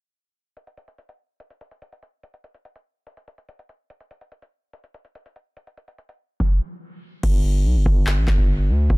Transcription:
0.57 closed hi-hat medium
0.67 closed hi-hat medium
0.77 closed hi-hat medium
0.88 closed hi-hat soft
0.98 closed hi-hat medium
1.09 closed hi-hat medium
1.40 closed hi-hat medium
1.50 closed hi-hat medium
1.61 closed hi-hat medium
1.71 closed hi-hat soft
1.82 closed hi-hat medium
1.92 closed hi-hat medium
2.03 closed hi-hat medium
2.23 closed hi-hat medium
2.34 closed hi-hat medium
2.44 closed hi-hat medium
2.54 closed hi-hat soft
2.65 closed hi-hat medium
2.76 closed hi-hat medium
3.07 closed hi-hat medium
3.17 closed hi-hat medium
3.28 closed hi-hat medium
3.38 closed hi-hat soft
3.49 closed hi-hat medium
3.59 closed hi-hat medium
3.69 closed hi-hat medium
3.90 closed hi-hat medium
4.00 closed hi-hat medium
4.11 closed hi-hat medium
4.21 closed hi-hat soft
4.32 closed hi-hat medium
4.42 closed hi-hat medium
4.73 closed hi-hat medium
4.84 closed hi-hat medium
4.94 closed hi-hat medium
5.05 closed hi-hat soft
5.15 closed hi-hat medium
5.26 closed hi-hat medium
5.36 closed hi-hat medium
5.57 closed hi-hat medium
5.67 closed hi-hat medium
5.77 closed hi-hat medium
5.88 closed hi-hat soft
5.98 closed hi-hat medium
6.09 closed hi-hat medium
6.40 kick loud
6.40 snare medium
7.23 7.67 G1 loud
7.23 kick loud
7.23 crash medium
7.65 7.77 B1 loud
7.75 7.85 G1 loud
7.86 8.19 G1 loud
7.86 kick medium
8.07 clap loud
8.17 8.27 A1 medium
8.28 8.71 G1 loud
8.28 kick loud
8.28 clap medium
8.38 kick loud
8.69 8.89 D2 loud
8.90 8.98 G1 loud
8.90 kick loud

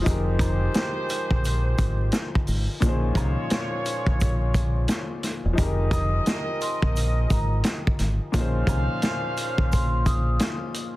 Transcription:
0.01 2.76 F3 medium
0.01 2.77 D#4 medium
0.06 0.67 F1 loud
0.06 2.44 G#3 medium
0.06 2.78 G4 medium
0.06 2.44 G4 medium
0.06 2.79 G#4 medium
0.06 2.44 C5 loud
0.06 kick loud
0.06 closed hi-hat loud
0.06 shaker medium
0.10 2.80 A#4 medium
0.39 kick loud
0.39 closed hi-hat medium
0.39 high woodblock medium
0.39 shaker medium
0.74 snare loud
0.74 closed hi-hat medium
0.74 shaker medium
1.09 closed hi-hat medium
1.09 shaker soft
1.31 1.73 A#1 medium
1.31 kick loud
1.45 closed hi-hat medium
1.45 shaker medium
1.78 2.09 G#1 medium
1.78 kick medium
1.78 closed hi-hat medium
1.78 shaker medium
2.12 snare loud
2.12 closed hi-hat medium
2.12 shaker medium
2.35 kick loud
2.47 2.66 G#1 medium
2.47 open hi-hat medium
2.47 shaker medium
2.80 3.13 A#1 loud
2.80 5.53 A#2 medium
2.80 5.52 F3 medium
2.80 5.19 G#3 medium
2.80 5.55 C#4 medium
2.80 5.19 F4 medium
2.80 5.19 C#5 loud
2.80 kick loud
2.80 closed hi-hat loud
2.80 shaker medium
2.85 5.54 D#4 medium
2.85 5.56 G#4 medium
2.85 5.57 C5 medium
3.15 3.34 C2 medium
3.15 kick loud
3.15 closed hi-hat medium
3.15 high woodblock medium
3.15 shaker soft
3.50 snare loud
3.50 closed hi-hat medium
3.50 shaker medium
3.86 closed hi-hat medium
3.86 shaker soft
4.07 4.85 A#1 medium
4.07 kick loud
4.21 kick medium
4.21 closed hi-hat medium
4.21 shaker medium
4.54 kick medium
4.54 closed hi-hat medium
4.54 shaker medium
4.88 snare loud
4.88 closed hi-hat medium
4.88 shaker medium
5.23 snare soft
5.23 closed hi-hat medium
5.23 shaker medium
5.45 5.57 E1 medium
5.53 8.27 F3 medium
5.53 8.28 D#4 medium
5.57 6.19 F1 loud
5.57 7.95 C4 medium
5.57 8.29 G4 medium
5.57 8.31 G#4 medium
5.57 7.95 A#4 medium
5.57 7.95 D#5 loud
5.57 kick loud
5.57 closed hi-hat loud
5.57 shaker medium
5.62 8.32 A#4 medium
5.91 6.23 D#6 medium
5.91 kick loud
5.91 closed hi-hat medium
5.91 high woodblock medium
5.91 shaker soft
6.26 snare loud
6.26 closed hi-hat medium
6.26 shaker medium
6.61 6.80 C6 medium
6.61 closed hi-hat medium
6.61 shaker soft
6.82 7.25 A#1 medium
6.82 kick loud
6.96 closed hi-hat medium
6.96 shaker medium
7.30 7.61 G#1 medium
7.30 7.62 A#5 medium
7.30 kick medium
7.30 closed hi-hat medium
7.30 shaker medium
7.63 snare loud
7.63 closed hi-hat medium
7.63 shaker medium
7.87 kick loud
7.99 8.18 G#1 medium
7.99 snare soft
7.99 closed hi-hat medium
7.99 shaker medium
8.32 8.65 A#1 loud
8.32 10.96 A#2 medium
8.32 10.96 F3 medium
8.32 10.71 C#4 medium
8.32 10.96 C#4 medium
8.32 10.71 C5 medium
8.32 10.71 F5 loud
8.32 kick loud
8.32 closed hi-hat loud
8.32 shaker medium
8.37 10.96 D#4 medium
8.37 10.96 G#4 medium
8.37 10.96 C5 medium
8.67 8.86 C2 medium
8.67 9.68 G#5 medium
8.67 kick loud
8.67 closed hi-hat medium
8.67 high woodblock medium
8.67 shaker soft
9.02 snare loud
9.02 closed hi-hat medium
9.02 shaker medium
9.37 closed hi-hat medium
9.37 shaker soft
9.58 10.37 A#1 medium
9.58 kick loud
9.72 10.03 C6 medium
9.72 kick medium
9.72 closed hi-hat medium
9.72 shaker medium
10.06 10.37 D#6 medium
10.06 kick medium
10.06 closed hi-hat medium
10.06 shaker medium
10.39 snare loud
10.39 closed hi-hat medium
10.39 shaker medium
10.74 closed hi-hat medium
10.74 shaker medium

